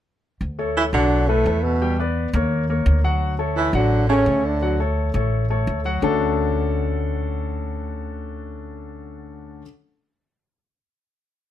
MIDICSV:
0, 0, Header, 1, 5, 480
1, 0, Start_track
1, 0, Key_signature, 2, "major"
1, 0, Tempo, 352319
1, 557, Time_signature, 4, 2, 24, 8
1, 15669, End_track
2, 0, Start_track
2, 0, Title_t, "Grand piano"
2, 0, Program_c, 0, 0
2, 798, Note_on_c, 0, 57, 66
2, 803, Note_on_c, 0, 69, 66
2, 808, Note_on_c, 0, 73, 66
2, 1188, Note_off_c, 0, 57, 0
2, 1191, Note_off_c, 0, 69, 0
2, 1194, Note_off_c, 0, 73, 0
2, 1280, Note_on_c, 0, 54, 79
2, 1280, Note_on_c, 0, 66, 86
2, 1286, Note_on_c, 0, 78, 86
2, 1668, Note_off_c, 0, 66, 0
2, 1669, Note_off_c, 0, 54, 0
2, 1672, Note_off_c, 0, 78, 0
2, 1755, Note_on_c, 0, 57, 75
2, 1762, Note_on_c, 0, 69, 68
2, 1764, Note_on_c, 0, 71, 70
2, 1949, Note_off_c, 0, 57, 0
2, 1953, Note_off_c, 0, 69, 0
2, 1954, Note_off_c, 0, 71, 0
2, 1999, Note_on_c, 0, 57, 63
2, 1999, Note_on_c, 0, 69, 63
2, 2007, Note_on_c, 0, 71, 59
2, 2386, Note_off_c, 0, 57, 0
2, 2387, Note_off_c, 0, 69, 0
2, 2391, Note_off_c, 0, 71, 0
2, 2473, Note_on_c, 0, 55, 76
2, 2474, Note_on_c, 0, 67, 72
2, 2479, Note_on_c, 0, 79, 70
2, 2666, Note_off_c, 0, 55, 0
2, 2666, Note_off_c, 0, 67, 0
2, 2669, Note_off_c, 0, 79, 0
2, 2719, Note_on_c, 0, 59, 70
2, 2719, Note_on_c, 0, 71, 66
2, 2729, Note_on_c, 0, 74, 68
2, 3105, Note_off_c, 0, 59, 0
2, 3105, Note_off_c, 0, 71, 0
2, 3111, Note_off_c, 0, 74, 0
2, 3195, Note_on_c, 0, 58, 71
2, 3199, Note_on_c, 0, 70, 66
2, 3208, Note_on_c, 0, 73, 75
2, 3582, Note_off_c, 0, 58, 0
2, 3584, Note_off_c, 0, 70, 0
2, 3589, Note_off_c, 0, 73, 0
2, 3673, Note_on_c, 0, 58, 64
2, 3679, Note_on_c, 0, 70, 65
2, 3680, Note_on_c, 0, 73, 69
2, 4059, Note_off_c, 0, 58, 0
2, 4063, Note_off_c, 0, 70, 0
2, 4064, Note_off_c, 0, 73, 0
2, 4142, Note_on_c, 0, 54, 77
2, 4146, Note_on_c, 0, 66, 71
2, 4150, Note_on_c, 0, 78, 82
2, 4533, Note_off_c, 0, 54, 0
2, 4535, Note_off_c, 0, 66, 0
2, 4537, Note_off_c, 0, 78, 0
2, 4615, Note_on_c, 0, 57, 68
2, 4618, Note_on_c, 0, 69, 67
2, 4623, Note_on_c, 0, 73, 72
2, 5008, Note_off_c, 0, 57, 0
2, 5010, Note_off_c, 0, 69, 0
2, 5013, Note_off_c, 0, 73, 0
2, 5098, Note_on_c, 0, 54, 82
2, 5104, Note_on_c, 0, 66, 80
2, 5109, Note_on_c, 0, 78, 78
2, 5489, Note_off_c, 0, 54, 0
2, 5493, Note_off_c, 0, 66, 0
2, 5496, Note_off_c, 0, 78, 0
2, 5574, Note_on_c, 0, 57, 70
2, 5581, Note_on_c, 0, 69, 74
2, 5582, Note_on_c, 0, 73, 69
2, 5770, Note_off_c, 0, 57, 0
2, 5775, Note_off_c, 0, 69, 0
2, 5775, Note_off_c, 0, 73, 0
2, 5817, Note_on_c, 0, 57, 65
2, 5817, Note_on_c, 0, 69, 65
2, 5823, Note_on_c, 0, 73, 68
2, 6209, Note_off_c, 0, 57, 0
2, 6209, Note_off_c, 0, 69, 0
2, 6213, Note_off_c, 0, 73, 0
2, 6292, Note_on_c, 0, 54, 70
2, 6298, Note_on_c, 0, 66, 73
2, 6302, Note_on_c, 0, 78, 73
2, 6490, Note_off_c, 0, 54, 0
2, 6493, Note_off_c, 0, 66, 0
2, 6495, Note_off_c, 0, 78, 0
2, 6534, Note_on_c, 0, 57, 63
2, 6540, Note_on_c, 0, 69, 70
2, 6541, Note_on_c, 0, 73, 68
2, 6928, Note_off_c, 0, 57, 0
2, 6932, Note_off_c, 0, 69, 0
2, 6932, Note_off_c, 0, 73, 0
2, 7017, Note_on_c, 0, 57, 69
2, 7023, Note_on_c, 0, 69, 72
2, 7025, Note_on_c, 0, 73, 66
2, 7410, Note_off_c, 0, 57, 0
2, 7414, Note_off_c, 0, 69, 0
2, 7415, Note_off_c, 0, 73, 0
2, 7496, Note_on_c, 0, 57, 70
2, 7499, Note_on_c, 0, 69, 72
2, 7503, Note_on_c, 0, 73, 69
2, 7890, Note_off_c, 0, 57, 0
2, 7892, Note_off_c, 0, 69, 0
2, 7894, Note_off_c, 0, 73, 0
2, 7972, Note_on_c, 0, 54, 76
2, 7976, Note_on_c, 0, 66, 80
2, 7980, Note_on_c, 0, 78, 84
2, 8171, Note_off_c, 0, 54, 0
2, 8174, Note_off_c, 0, 66, 0
2, 8176, Note_off_c, 0, 78, 0
2, 8210, Note_on_c, 0, 57, 67
2, 8212, Note_on_c, 0, 50, 74
2, 8214, Note_on_c, 0, 61, 73
2, 8220, Note_on_c, 0, 62, 77
2, 8225, Note_on_c, 0, 66, 70
2, 8227, Note_on_c, 0, 69, 92
2, 13096, Note_off_c, 0, 57, 0
2, 13098, Note_off_c, 0, 50, 0
2, 13100, Note_off_c, 0, 61, 0
2, 13105, Note_off_c, 0, 62, 0
2, 13111, Note_off_c, 0, 66, 0
2, 13113, Note_off_c, 0, 69, 0
2, 15669, End_track
3, 0, Start_track
3, 0, Title_t, "Trombone"
3, 0, Program_c, 1, 57
3, 1053, Note_on_c, 1, 64, 90
3, 1156, Note_off_c, 1, 64, 0
3, 1284, Note_on_c, 1, 62, 95
3, 1753, Note_on_c, 1, 57, 88
3, 1774, Note_off_c, 1, 62, 0
3, 2225, Note_on_c, 1, 59, 76
3, 2245, Note_off_c, 1, 57, 0
3, 2704, Note_off_c, 1, 59, 0
3, 4860, Note_on_c, 1, 64, 95
3, 5107, Note_on_c, 1, 62, 95
3, 5127, Note_off_c, 1, 64, 0
3, 5572, Note_off_c, 1, 62, 0
3, 5581, Note_on_c, 1, 61, 93
3, 6075, Note_on_c, 1, 62, 85
3, 6095, Note_off_c, 1, 61, 0
3, 6544, Note_off_c, 1, 62, 0
3, 15669, End_track
4, 0, Start_track
4, 0, Title_t, "Baritone saxophone"
4, 0, Program_c, 2, 67
4, 1048, Note_on_c, 2, 52, 75
4, 1152, Note_off_c, 2, 52, 0
4, 1275, Note_on_c, 2, 50, 84
4, 1749, Note_on_c, 2, 45, 75
4, 1770, Note_off_c, 2, 50, 0
4, 2234, Note_on_c, 2, 47, 66
4, 2254, Note_off_c, 2, 45, 0
4, 2708, Note_off_c, 2, 47, 0
4, 4860, Note_on_c, 2, 52, 86
4, 5093, Note_on_c, 2, 50, 83
4, 5114, Note_off_c, 2, 52, 0
4, 5565, Note_off_c, 2, 50, 0
4, 5573, Note_on_c, 2, 49, 75
4, 6055, Note_on_c, 2, 50, 66
4, 6075, Note_off_c, 2, 49, 0
4, 6534, Note_off_c, 2, 50, 0
4, 15669, End_track
5, 0, Start_track
5, 0, Title_t, "Upright bass"
5, 0, Program_c, 3, 32
5, 554, Note_on_c, 3, 38, 76
5, 1221, Note_off_c, 3, 38, 0
5, 1263, Note_on_c, 3, 35, 81
5, 1934, Note_off_c, 3, 35, 0
5, 1984, Note_on_c, 3, 40, 84
5, 3102, Note_off_c, 3, 40, 0
5, 3180, Note_on_c, 3, 39, 98
5, 3848, Note_off_c, 3, 39, 0
5, 3894, Note_on_c, 3, 38, 96
5, 5014, Note_off_c, 3, 38, 0
5, 5081, Note_on_c, 3, 33, 85
5, 5756, Note_off_c, 3, 33, 0
5, 5804, Note_on_c, 3, 38, 90
5, 6931, Note_off_c, 3, 38, 0
5, 7001, Note_on_c, 3, 33, 86
5, 7678, Note_off_c, 3, 33, 0
5, 7728, Note_on_c, 3, 38, 86
5, 8157, Note_off_c, 3, 38, 0
5, 8203, Note_on_c, 3, 38, 82
5, 13089, Note_off_c, 3, 38, 0
5, 15669, End_track
0, 0, End_of_file